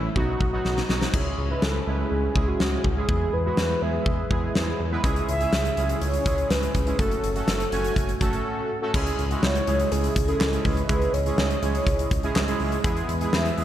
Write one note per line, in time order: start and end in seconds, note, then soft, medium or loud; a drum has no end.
0.00 0.16 A4 medium
0.16 0.33 B1 medium
0.16 0.46 F#3 medium
0.16 0.46 B3 medium
0.16 0.46 D#4 medium
0.16 0.46 F#4 loud
0.16 kick medium
0.40 0.58 B1 loud
0.40 kick medium
0.53 0.82 F#3 medium
0.53 0.82 B3 medium
0.53 0.82 D#4 medium
0.53 0.82 F#4 medium
0.65 0.82 B1 loud
0.65 snare medium
0.77 snare medium
0.89 1.06 B1 medium
0.89 1.09 F#3 medium
0.89 1.09 B3 medium
0.89 1.09 D#4 medium
0.89 1.09 F#4 medium
0.89 snare medium
1.01 snare medium
1.14 1.31 C#2 loud
1.14 3.07 C#3 medium
1.14 1.43 G#3 medium
1.14 1.43 C#4 medium
1.14 3.07 C#4 medium
1.14 1.43 E4 medium
1.14 5.00 E4 medium
1.14 1.43 G#4 medium
1.14 1.52 C#5 medium
1.14 3.07 G#5 medium
1.14 kick loud
1.14 crash medium
1.38 1.55 C#2 loud
1.50 1.80 G#3 medium
1.50 1.80 C#4 medium
1.50 1.80 E4 medium
1.50 1.80 B4 medium
1.50 1.64 B4 medium
1.62 1.80 C#2 loud
1.62 2.01 A4 loud
1.62 snare loud
1.87 2.04 C#2 loud
1.87 2.26 G#3 medium
1.87 2.26 C#4 medium
1.87 2.26 E4 medium
1.87 2.26 B4 medium
1.99 2.49 G#4 loud
2.11 2.28 C#2 loud
2.36 2.53 C#2 loud
2.36 2.85 G#3 medium
2.36 2.85 C#4 medium
2.36 2.85 E4 medium
2.36 2.85 G#4 medium
2.36 kick medium
2.48 2.96 F#4 medium
2.60 2.77 C#2 medium
2.60 snare loud
2.84 3.02 C#2 loud
2.84 kick medium
2.97 3.07 G#3 medium
2.97 3.07 C#4 medium
2.97 3.06 E4 medium
2.97 3.06 G#4 medium
2.97 3.35 G#4 loud
3.09 3.26 E2 loud
3.09 5.02 E3 medium
3.09 3.38 G#3 medium
3.09 3.38 B3 medium
3.09 3.38 E4 medium
3.09 5.02 G#4 medium
3.09 3.38 G#4 medium
3.09 5.02 B4 medium
3.09 kick loud
3.33 3.50 E2 loud
3.33 3.84 B4 loud
3.45 3.75 G#3 medium
3.45 3.75 B3 medium
3.45 3.75 E4 medium
3.45 3.75 F#4 medium
3.57 3.75 E2 loud
3.57 snare loud
3.82 3.99 E2 medium
3.82 4.21 G#3 medium
3.82 4.21 B3 medium
3.82 4.21 E4 medium
3.82 4.21 G#4 medium
3.82 4.80 E5 loud
4.06 4.23 E2 loud
4.06 kick medium
4.31 4.48 E2 loud
4.31 4.80 G#3 medium
4.31 4.80 B3 medium
4.31 4.80 E4 medium
4.31 4.80 G#4 medium
4.31 kick medium
4.55 4.72 E2 loud
4.55 snare loud
4.80 4.97 E2 loud
4.92 5.02 G#3 medium
4.92 5.02 B3 medium
4.92 5.02 E4 medium
4.92 5.02 B4 loud
5.04 5.21 C#2 loud
5.04 6.97 C#3 medium
5.04 5.33 G#3 medium
5.04 8.90 C#4 medium
5.04 5.33 C#4 medium
5.04 6.97 E4 medium
5.04 5.33 E4 medium
5.04 6.97 G#4 medium
5.04 5.33 G#4 loud
5.04 kick loud
5.04 closed hi-hat medium
5.16 closed hi-hat medium
5.28 5.45 C#2 loud
5.28 5.97 E5 loud
5.28 closed hi-hat medium
5.41 5.70 G#3 medium
5.41 5.70 C#4 medium
5.41 5.70 E4 medium
5.41 5.70 G#4 medium
5.41 closed hi-hat medium
5.53 5.70 C#2 loud
5.53 snare loud
5.53 closed hi-hat medium
5.65 closed hi-hat medium
5.77 5.94 C#2 medium
5.77 6.17 G#3 medium
5.77 6.17 C#4 medium
5.77 6.17 E4 medium
5.77 6.17 G#4 medium
5.77 closed hi-hat medium
5.89 closed hi-hat medium
6.01 6.19 C#2 loud
6.01 6.52 C#5 loud
6.01 closed hi-hat medium
6.14 closed hi-hat medium
6.26 6.43 C#2 loud
6.26 6.75 G#3 medium
6.26 6.75 C#4 medium
6.26 6.75 E4 medium
6.26 6.75 G#4 medium
6.26 kick medium
6.26 closed hi-hat medium
6.38 closed hi-hat soft
6.50 6.67 C#2 loud
6.50 6.99 B4 loud
6.50 snare loud
6.50 closed hi-hat medium
6.63 closed hi-hat medium
6.74 6.92 C#2 loud
6.74 kick medium
6.74 closed hi-hat medium
6.87 6.97 G#3 medium
6.87 6.97 C#4 medium
6.87 6.97 E4 medium
6.87 6.97 G#4 medium
6.87 closed hi-hat soft
6.99 7.16 F#1 loud
6.99 7.29 A3 medium
6.99 8.92 A3 medium
6.99 7.29 C#4 medium
6.99 7.29 F#4 medium
6.99 8.92 F#4 medium
6.99 7.29 A4 medium
6.99 8.41 A4 loud
6.99 kick loud
6.99 closed hi-hat medium
7.11 closed hi-hat medium
7.23 7.41 F#1 loud
7.23 closed hi-hat medium
7.36 7.65 A3 medium
7.36 7.65 C#4 medium
7.36 7.65 F#4 medium
7.36 7.65 A4 medium
7.36 closed hi-hat medium
7.48 7.65 F#1 medium
7.48 snare loud
7.48 closed hi-hat medium
7.60 closed hi-hat medium
7.72 7.89 F#1 medium
7.72 8.12 A3 medium
7.72 8.12 C#4 medium
7.72 8.12 F#4 medium
7.72 8.12 G#5 medium
7.72 closed hi-hat medium
7.84 closed hi-hat medium
7.96 8.13 F#1 loud
7.96 kick medium
7.96 closed hi-hat medium
8.09 closed hi-hat medium
8.21 8.38 F#1 loud
8.21 8.70 A3 medium
8.21 8.70 C#4 medium
8.21 8.70 F#4 medium
8.21 8.70 A4 loud
8.21 kick medium
8.21 closed hi-hat medium
8.33 closed hi-hat soft
8.82 8.92 A3 medium
8.82 8.92 C#4 medium
8.82 8.92 F#4 medium
8.82 8.92 A4 loud
8.94 9.11 C#2 loud
8.94 12.81 C#3 medium
8.94 9.24 G#3 medium
8.94 9.24 C#4 medium
8.94 12.81 C#4 medium
8.94 12.81 E4 medium
8.94 9.24 E4 medium
8.94 9.24 G#4 loud
8.94 12.81 D#5 medium
8.94 kick loud
8.94 crash loud
9.06 closed hi-hat medium
9.19 9.36 C#2 loud
9.19 closed hi-hat medium
9.31 9.60 G#3 medium
9.31 9.60 C#4 medium
9.31 9.60 E4 medium
9.31 9.60 F#4 medium
9.31 closed hi-hat medium
9.43 9.60 C#2 loud
9.43 9.93 C#5 loud
9.43 snare loud
9.55 closed hi-hat medium
9.67 9.84 C#2 loud
9.67 10.17 G#3 medium
9.67 10.17 C#4 medium
9.67 10.17 E4 medium
9.67 10.17 G#4 medium
9.67 closed hi-hat medium
9.80 closed hi-hat medium
9.92 10.09 C#2 loud
9.92 10.29 G#4 loud
9.92 closed hi-hat medium
10.04 closed hi-hat medium
10.16 10.33 C#2 loud
10.16 kick medium
10.16 closed hi-hat medium
10.28 10.48 G#3 medium
10.28 10.48 C#4 medium
10.28 10.48 E4 medium
10.28 10.48 G#4 medium
10.28 10.66 A4 loud
10.28 closed hi-hat soft
10.40 10.58 C#2 loud
10.40 snare loud
10.40 clap loud
10.53 10.82 G#3 medium
10.53 10.82 C#4 medium
10.53 10.82 E4 medium
10.53 10.82 G#4 medium
10.53 closed hi-hat medium
10.65 10.82 C#2 loud
10.65 11.15 B4 loud
10.65 kick medium
10.65 open hi-hat medium
10.77 closed hi-hat soft
10.89 11.06 C#2 loud
10.89 11.19 G#3 medium
10.89 11.19 C#4 medium
10.89 11.19 E4 medium
10.89 11.19 G#4 medium
10.89 kick loud
10.89 closed hi-hat medium
11.02 closed hi-hat medium
11.13 11.31 C#2 loud
11.13 12.60 C#5 loud
11.13 closed hi-hat medium
11.26 11.55 G#3 medium
11.26 11.55 C#4 medium
11.26 11.55 E4 medium
11.26 11.55 G#4 medium
11.26 closed hi-hat medium
11.38 11.55 C#2 loud
11.38 snare loud
11.50 closed hi-hat medium
11.62 11.80 C#2 loud
11.62 12.12 G#3 medium
11.62 12.12 C#4 medium
11.62 12.12 E4 medium
11.62 12.12 G#4 medium
11.62 closed hi-hat medium
11.75 closed hi-hat medium
11.87 12.04 C#2 loud
11.87 kick medium
11.87 closed hi-hat medium
11.99 closed hi-hat medium
12.11 12.28 C#2 loud
12.11 kick medium
12.11 closed hi-hat medium
12.23 12.43 G#3 medium
12.23 12.43 C#4 medium
12.23 12.43 E4 medium
12.23 12.43 G#4 loud
12.23 closed hi-hat soft
12.36 12.53 C#2 loud
12.36 snare loud
12.36 clap medium
12.48 12.77 G#3 medium
12.48 12.77 C#4 medium
12.48 12.77 E4 medium
12.48 12.77 G#4 loud
12.48 closed hi-hat medium
12.60 12.77 C#2 loud
12.60 open hi-hat medium
12.72 closed hi-hat medium
12.84 13.01 E2 loud
12.84 13.64 E3 medium
12.84 13.14 G#3 loud
12.84 13.14 B3 medium
12.84 13.14 E4 medium
12.84 13.64 E4 medium
12.84 13.14 G#4 loud
12.84 13.64 G#4 medium
12.84 13.64 B4 medium
12.84 kick loud
12.84 closed hi-hat medium
12.97 closed hi-hat medium
13.09 13.26 E2 loud
13.09 closed hi-hat medium
13.21 13.51 G#3 medium
13.21 13.51 B3 medium
13.21 13.51 E4 medium
13.21 13.51 G#4 medium
13.21 closed hi-hat medium
13.33 13.50 E2 loud
13.33 13.64 E5 loud
13.33 snare loud
13.45 closed hi-hat medium
13.58 13.64 E2 loud
13.58 13.64 G#3 medium
13.58 13.64 B3 medium
13.58 13.64 E4 medium
13.58 13.64 G#4 medium
13.58 open hi-hat medium